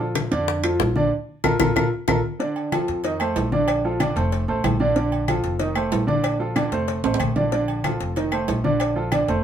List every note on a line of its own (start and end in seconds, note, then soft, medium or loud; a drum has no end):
0.00 0.26 A#1 loud
0.00 0.25 F3 medium
0.00 0.26 F4 medium
0.00 0.26 A4 medium
0.00 high conga soft
0.15 high bongo medium
0.15 high conga loud
0.15 high timbale medium
0.15 low timbale medium
0.15 claves medium
0.31 0.76 F2 loud
0.31 0.58 D3 loud
0.31 0.58 D4 loud
0.31 0.58 D5 loud
0.31 high timbale medium
0.47 high bongo medium
0.47 high conga soft
0.63 0.90 F3 medium
0.63 0.90 F4 medium
0.63 0.90 A4 medium
0.63 high conga soft
0.63 high timbale loud
0.63 claves medium
0.79 1.09 A#1 loud
0.79 high bongo medium
0.79 low bongo medium
0.79 high conga soft
0.79 low timbale loud
0.96 1.09 D3 medium
0.96 1.09 D4 medium
0.96 1.09 D5 medium
0.96 high conga loud
1.44 1.56 A#1 medium
1.44 1.54 F4 medium
1.44 1.54 A4 loud
1.44 1.54 A#4 loud
1.44 low bongo medium
1.44 high conga loud
1.44 high timbale medium
1.44 claves loud
1.60 1.72 A#1 medium
1.60 1.70 F4 loud
1.60 1.70 A4 loud
1.60 1.70 A#4 loud
1.60 low bongo loud
1.60 high conga loud
1.60 high timbale loud
1.60 claves loud
1.76 1.88 A#1 loud
1.76 1.86 F4 loud
1.76 1.86 A4 medium
1.76 1.86 A#4 loud
1.76 low bongo medium
1.76 high conga loud
1.76 high timbale medium
1.76 claves loud
2.08 2.20 A#1 loud
2.08 2.18 F4 medium
2.08 2.18 A4 loud
2.08 2.18 A#4 loud
2.08 low bongo loud
2.08 high conga loud
2.08 high timbale loud
2.08 claves loud
2.40 2.66 D3 medium
2.40 2.66 D4 medium
2.40 2.66 D5 medium
2.40 cowbell loud
2.40 high conga soft
2.56 high conga soft
2.56 low agogo medium
2.72 2.98 F3 medium
2.72 2.98 F4 medium
2.72 2.99 A4 medium
2.72 cowbell medium
2.72 high conga medium
2.72 low timbale medium
2.72 low agogo loud
2.72 claves medium
2.88 3.33 F2 medium
2.88 cowbell medium
3.04 3.17 D#3 medium
3.04 3.17 D#4 medium
3.04 3.18 D#5 medium
3.04 cowbell loud
3.04 high conga soft
3.04 low agogo medium
3.20 3.47 A3 medium
3.20 3.47 A4 medium
3.20 3.47 C5 medium
3.20 high conga soft
3.20 low agogo loud
3.20 claves medium
3.36 4.10 A#1 loud
3.36 cowbell medium
3.36 high conga soft
3.36 low timbale loud
3.36 low agogo medium
3.52 3.78 D3 medium
3.52 3.78 D4 loud
3.52 3.79 D5 medium
3.52 high conga loud
3.68 cowbell loud
3.68 high conga soft
3.68 low agogo loud
3.68 claves medium
3.84 3.97 F3 medium
3.84 3.98 F4 medium
3.84 3.98 A4 medium
3.84 high conga soft
4.00 4.13 D3 medium
4.00 4.13 D4 medium
4.00 4.14 D5 medium
4.00 cowbell medium
4.00 high conga loud
4.00 low timbale medium
4.00 low agogo loud
4.00 claves medium
4.16 4.46 F1 loud
4.16 4.42 A3 medium
4.16 4.42 A4 medium
4.16 4.43 C5 medium
4.16 cowbell medium
4.16 high conga soft
4.32 cowbell loud
4.32 high conga soft
4.32 low agogo medium
4.48 4.63 A1 medium
4.48 4.74 A3 medium
4.48 4.75 A4 medium
4.48 4.75 C5 medium
4.48 high conga soft
4.64 5.39 A#1 loud
4.64 cowbell medium
4.64 high conga medium
4.64 low timbale loud
4.64 low agogo loud
4.64 claves medium
4.80 4.93 D3 loud
4.80 4.93 D4 medium
4.80 4.93 D5 medium
4.80 high conga medium
4.96 5.22 D3 medium
4.96 5.22 D4 medium
4.96 5.23 D5 medium
4.96 cowbell loud
5.12 high conga soft
5.12 low agogo medium
5.28 5.54 F3 medium
5.28 5.54 F4 medium
5.28 5.55 A4 medium
5.28 cowbell medium
5.28 high conga loud
5.28 low timbale medium
5.28 low agogo loud
5.28 claves medium
5.44 5.89 F1 medium
5.44 cowbell medium
5.59 5.73 D#3 medium
5.59 5.73 D#4 medium
5.59 5.73 D#5 medium
5.59 cowbell loud
5.59 high conga soft
5.59 low agogo medium
5.75 6.02 A3 medium
5.75 6.02 A4 medium
5.75 6.02 C5 medium
5.75 high conga soft
5.75 low agogo loud
5.75 claves medium
5.92 6.66 A#1 loud
5.92 cowbell medium
5.92 high conga soft
5.92 low timbale loud
5.92 low agogo medium
6.07 6.34 D3 medium
6.07 6.34 D4 medium
6.07 6.34 D5 medium
6.07 high conga loud
6.24 cowbell loud
6.24 high conga soft
6.24 low agogo loud
6.24 claves medium
6.39 6.53 F3 medium
6.39 6.53 F4 medium
6.39 6.53 A4 medium
6.39 high conga soft
6.56 6.69 D3 medium
6.56 6.69 D4 medium
6.56 6.69 D5 medium
6.56 cowbell medium
6.56 high conga loud
6.56 low timbale medium
6.56 low agogo loud
6.56 claves medium
6.72 7.02 F1 medium
6.72 6.98 A3 medium
6.72 6.98 A4 medium
6.72 6.98 C5 medium
6.72 cowbell medium
6.72 high conga soft
6.88 cowbell loud
6.88 high conga soft
6.88 low agogo medium
7.04 7.19 A1 medium
7.04 7.30 A3 medium
7.04 7.30 A4 medium
7.04 7.31 C5 medium
7.04 high conga soft
7.04 high timbale loud
7.14 high timbale loud
7.20 7.95 A#1 loud
7.20 cowbell medium
7.20 high conga medium
7.20 low agogo loud
7.20 claves medium
7.36 7.49 D3 medium
7.36 7.49 D4 medium
7.36 7.49 D5 medium
7.36 high conga medium
7.36 low timbale medium
7.52 7.79 D3 medium
7.52 7.79 D4 medium
7.52 7.79 D5 medium
7.52 cowbell loud
7.68 high conga soft
7.68 low agogo medium
7.84 8.10 F3 medium
7.84 8.11 F4 medium
7.84 8.11 A4 medium
7.84 cowbell medium
7.84 high conga loud
7.84 low timbale medium
7.84 low agogo loud
7.84 claves medium
8.00 8.45 F1 medium
8.00 cowbell medium
8.16 8.29 D#3 medium
8.16 8.30 D#4 medium
8.16 8.30 D#5 medium
8.16 cowbell medium
8.16 high conga soft
8.16 low agogo medium
8.32 8.58 A3 medium
8.32 8.59 A4 medium
8.32 8.59 C5 medium
8.32 high conga soft
8.32 low agogo loud
8.32 claves medium
8.48 9.23 A#1 medium
8.48 cowbell medium
8.48 high conga soft
8.48 low timbale loud
8.48 low agogo medium
8.64 8.90 D3 loud
8.64 8.91 D4 medium
8.64 8.91 D5 medium
8.64 high conga loud
8.80 cowbell loud
8.80 high conga soft
8.80 low agogo loud
8.80 claves medium
8.96 9.09 F3 medium
8.96 9.09 F4 medium
8.96 9.09 A4 medium
8.96 high conga soft
9.12 9.25 D3 medium
9.12 9.25 D4 medium
9.12 9.26 D5 medium
9.12 cowbell medium
9.12 high conga loud
9.12 low timbale medium
9.12 low agogo loud
9.12 claves medium
9.28 9.44 F1 loud
9.28 9.44 A3 medium
9.28 9.44 A4 medium
9.28 9.44 C5 medium
9.28 cowbell medium
9.28 high conga soft